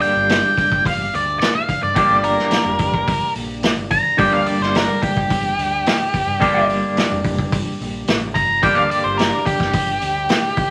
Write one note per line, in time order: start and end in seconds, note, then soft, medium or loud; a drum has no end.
0.00 1.94 G2 medium
0.00 1.94 D3 medium
0.00 1.95 G3 medium
0.00 1.96 A#3 medium
0.00 1.96 D4 loud
0.00 1.97 G4 loud
0.00 0.83 G5 medium
0.00 open hi-hat medium
0.16 0.40 G1 medium
0.29 snare medium
0.29 open hi-hat medium
0.58 kick medium
0.58 open hi-hat medium
0.72 1.08 G1 medium
0.72 kick medium
0.85 1.13 F5 medium
0.85 kick medium
0.85 open hi-hat medium
1.14 1.38 D2 medium
1.14 1.38 D5 medium
1.14 open hi-hat soft
1.40 1.54 D5 medium
1.40 snare loud
1.40 open hi-hat medium
1.55 1.82 F5 medium
1.69 kick medium
1.69 open hi-hat medium
1.83 1.95 G2 medium
1.83 2.23 D5 medium
1.95 4.17 G2 medium
1.95 4.16 D3 medium
1.95 4.18 G3 medium
1.95 4.18 A#3 medium
1.95 4.19 D4 loud
1.95 4.19 G4 loud
1.95 kick loud
1.95 open hi-hat medium
2.10 2.35 G1 medium
2.24 3.32 A#4 medium
2.24 open hi-hat soft
2.39 snare soft
2.51 snare loud
2.51 open hi-hat medium
2.65 3.02 F1 loud
2.79 kick medium
2.79 open hi-hat medium
2.94 kick medium
3.08 3.20 G1 loud
3.08 kick medium
3.08 open hi-hat medium
3.35 3.72 A#1 medium
3.35 open hi-hat medium
3.63 snare loud
3.63 open hi-hat medium
3.77 4.02 G1 medium
3.91 4.18 A#5 loud
3.91 kick medium
3.91 open hi-hat medium
4.17 4.31 G1 loud
4.17 6.39 G2 medium
4.17 6.39 D3 medium
4.17 6.40 G3 medium
4.17 6.40 A#3 loud
4.17 6.41 D4 medium
4.17 6.41 G4 loud
4.17 4.32 G5 medium
4.17 kick loud
4.17 open hi-hat medium
4.33 4.45 D2 medium
4.33 4.47 F5 medium
4.46 4.62 D5 medium
4.46 open hi-hat medium
4.60 4.85 G1 medium
4.60 4.75 C5 medium
4.60 snare soft
4.75 5.03 A#4 medium
4.75 snare loud
4.75 open hi-hat medium
5.03 6.66 G4 medium
5.03 kick medium
5.03 open hi-hat medium
5.17 5.53 G1 medium
5.17 kick medium
5.30 kick medium
5.30 open hi-hat medium
5.58 5.82 D2 medium
5.58 open hi-hat medium
5.86 snare loud
5.86 open hi-hat medium
6.14 kick medium
6.14 open hi-hat medium
6.27 6.39 G2 medium
6.40 8.61 G2 medium
6.40 8.61 D3 medium
6.40 8.62 G3 medium
6.40 8.63 A#3 medium
6.40 8.63 D4 loud
6.40 8.64 G4 loud
6.40 kick loud
6.40 open hi-hat medium
6.56 6.80 G1 medium
6.69 open hi-hat soft
6.97 snare loud
6.97 open hi-hat medium
7.11 7.48 F1 medium
7.24 kick medium
7.24 open hi-hat medium
7.39 kick medium
7.52 7.65 G1 loud
7.52 kick medium
7.52 open hi-hat medium
7.81 8.05 A#1 medium
7.81 open hi-hat soft
8.08 8.33 A1 medium
8.08 snare loud
8.08 open hi-hat medium
8.35 8.61 G1 medium
8.35 8.62 A#5 loud
8.35 kick medium
8.35 open hi-hat medium
8.62 8.76 G1 medium
8.62 10.70 G2 medium
8.62 10.70 D3 medium
8.62 10.70 G3 medium
8.62 10.70 A#3 medium
8.62 10.70 D4 medium
8.62 10.70 G4 loud
8.62 8.77 G5 medium
8.62 kick loud
8.62 open hi-hat medium
8.75 8.90 D2 medium
8.75 8.90 F5 loud
8.90 9.04 D5 medium
8.90 open hi-hat medium
9.04 9.30 G1 medium
9.04 9.18 C5 medium
9.18 9.45 A#4 medium
9.18 snare medium
9.18 open hi-hat medium
9.46 10.70 G4 medium
9.46 kick medium
9.46 open hi-hat medium
9.60 9.97 G1 medium
9.60 kick medium
9.60 snare soft
9.73 kick medium
9.73 open hi-hat medium
10.01 10.27 D2 medium
10.01 open hi-hat medium
10.29 snare loud
10.29 open hi-hat medium
10.57 kick medium
10.57 open hi-hat medium